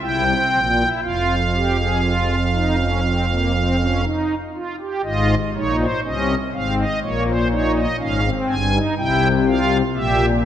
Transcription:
0.02 0.34 C2 medium
0.02 0.34 C3 medium
0.02 0.24 E4 medium
0.02 0.89 G5 medium
0.28 0.59 C4 medium
0.52 0.84 A#1 medium
0.52 0.84 A#2 medium
0.79 1.01 E4 medium
1.03 4.05 F1 medium
1.03 4.05 F2 medium
1.03 1.35 F4 medium
1.03 4.05 F5 medium
1.56 1.77 G4 medium
1.79 2.01 G#4 medium
2.04 2.35 F4 medium
2.54 2.76 D#4 medium
2.78 3.00 C#4 medium
3.04 3.25 C4 medium
3.30 3.51 A#3 medium
3.55 3.76 C4 medium
3.80 4.01 C#4 medium
4.03 4.35 D#4 medium
4.54 4.76 F4 medium
4.80 5.01 G4 medium
5.04 5.35 G#1 medium
5.04 5.35 G#2 medium
5.04 5.35 F4 medium
5.04 5.35 D#5 medium
5.55 5.85 A#1 medium
5.55 5.86 A#2 medium
5.55 5.86 D#4 medium
5.55 5.76 C#5 medium
5.79 6.00 C5 medium
6.04 6.35 C2 medium
6.04 6.34 C3 medium
6.04 6.35 C#4 medium
6.04 6.35 D#5 medium
6.54 6.84 G#1 medium
6.54 6.84 G#2 medium
6.54 6.84 C4 medium
6.54 6.75 F5 medium
6.79 6.99 D#5 medium
7.02 7.86 A#1 medium
7.02 7.86 A#2 medium
7.02 7.33 A#3 medium
7.02 7.23 C#5 medium
7.28 7.48 C5 medium
7.50 7.81 D#4 medium
7.50 7.72 C#5 medium
7.76 7.96 D#5 medium
7.99 8.30 G#1 medium
7.99 8.30 G#2 medium
7.99 8.20 C#4 medium
7.99 8.30 F5 medium
8.24 8.55 C4 medium
8.48 8.79 G1 medium
8.48 8.79 G2 medium
8.48 8.79 G#5 medium
8.73 8.95 D#4 medium
8.97 9.82 C2 medium
8.97 9.82 C3 medium
8.97 9.28 E4 medium
8.97 9.28 G5 medium
9.47 9.77 F4 medium
9.47 9.77 F5 medium
9.95 10.45 A#1 medium
9.95 10.45 A#2 medium
9.95 10.26 G4 medium
9.95 10.25 E5 medium

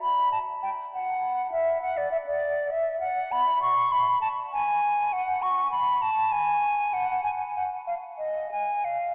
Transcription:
0.02 0.31 B5 medium
0.32 0.39 A5 medium
0.63 0.70 G5 medium
0.94 1.51 F#5 medium
1.52 1.81 E5 medium
1.82 1.99 F#5 medium
1.97 2.11 D5 medium
2.11 2.17 E5 medium
2.26 2.72 D5 medium
2.71 3.00 E5 medium
3.00 3.33 F#5 medium
3.32 3.61 B5 medium
3.62 3.93 C#6 medium
3.92 4.21 B5 medium
4.21 4.28 A5 medium
4.53 5.14 G#5 medium
5.13 5.44 F#5 medium
5.42 5.71 C#6 medium
5.71 6.03 B5 medium
6.02 6.33 A5 medium
6.32 6.95 G#5 medium
6.93 7.23 F#5 medium
7.24 7.31 G#5 medium
7.57 7.64 F#5 medium
7.87 7.94 F5 medium
8.18 8.51 D#5 medium
8.51 8.86 G#5 medium
8.85 9.15 F5 medium

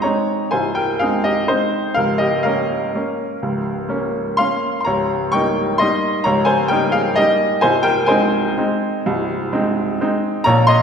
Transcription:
0.02 0.49 G#3 soft
0.02 0.49 C4 soft
0.02 0.49 D#4 soft
0.02 0.49 C#5 medium
0.02 0.51 A#5 medium
0.51 0.99 C1 soft
0.51 0.99 C2 soft
0.51 0.74 C5 medium
0.51 0.75 G#5 medium
0.75 0.99 A#4 medium
0.75 1.00 G5 medium
0.99 1.45 G#3 soft
0.99 1.46 C4 soft
0.99 1.46 D#4 soft
0.99 1.23 G#4 medium
0.99 1.24 F5 medium
1.24 1.47 G4 medium
1.24 1.48 D#5 medium
1.48 1.92 G#3 soft
1.48 1.92 C4 soft
1.48 1.92 D#4 medium
1.48 1.95 C5 medium
1.94 2.44 C#1 soft
1.94 2.44 C#2 medium
1.94 2.18 A#4 medium
1.94 2.19 F5 medium
2.18 2.43 G4 medium
2.18 2.44 D#5 medium
2.43 2.91 A#3 soft
2.43 2.91 C#4 soft
2.43 4.10 A#4 medium
2.43 4.13 F5 medium
2.95 3.38 A#3 soft
2.95 3.38 C#4 soft
3.43 3.88 C#1 soft
3.43 3.88 C#2 medium
3.89 4.35 A#3 soft
3.89 4.35 C#4 soft
4.37 4.83 A#3 soft
4.37 4.83 C#4 soft
4.37 4.77 F5 medium
4.37 4.79 C6 medium
4.81 5.32 A#5 medium
4.81 4.87 C6 medium
4.86 5.32 C#1 medium
4.86 5.32 C#2 medium
4.86 5.30 C#5 medium
5.32 5.77 G3 soft
5.32 5.77 A#3 soft
5.32 5.77 D#4 medium
5.32 5.77 G5 medium
5.32 5.80 C#6 medium
5.78 6.22 G3 soft
5.78 6.22 A#3 soft
5.78 6.23 D#4 soft
5.78 6.22 D#5 medium
5.78 6.25 C6 medium
6.24 6.70 C#1 medium
6.24 6.70 C#2 medium
6.24 6.46 C#5 medium
6.24 6.47 A#5 medium
6.45 6.68 C5 medium
6.45 6.69 G#5 medium
6.68 7.14 G3 soft
6.68 7.14 A#3 soft
6.68 7.14 D#4 medium
6.68 6.92 A#4 medium
6.68 6.93 G5 medium
6.92 7.15 G#4 medium
6.92 7.17 F5 medium
7.16 7.60 G3 soft
7.16 7.60 A#3 soft
7.16 7.60 D#4 medium
7.16 7.60 G4 medium
7.16 7.62 D#5 medium
7.61 8.09 C1 medium
7.61 8.08 C2 medium
7.61 7.84 C5 medium
7.61 7.85 G#5 medium
7.83 8.07 A#4 medium
7.83 8.08 G5 medium
8.06 8.53 G#3 medium
8.06 8.53 C4 medium
8.06 8.53 D#4 medium
8.06 9.71 C5 medium
8.06 9.74 G#5 medium
8.58 9.01 G#3 medium
8.58 9.01 C4 soft
8.58 9.02 D#4 medium
9.06 9.51 C1 medium
9.06 9.51 C2 medium
9.53 9.97 G#3 medium
9.53 9.97 C4 medium
9.53 9.97 D#4 medium
10.01 10.43 G#3 medium
10.01 10.43 C4 medium
10.01 10.43 D#4 medium
10.44 10.82 A#1 medium
10.44 10.82 A#2 medium
10.44 10.67 C#5 medium
10.44 10.68 A#5 loud
10.67 10.82 D#5 medium
10.67 10.82 C6 loud

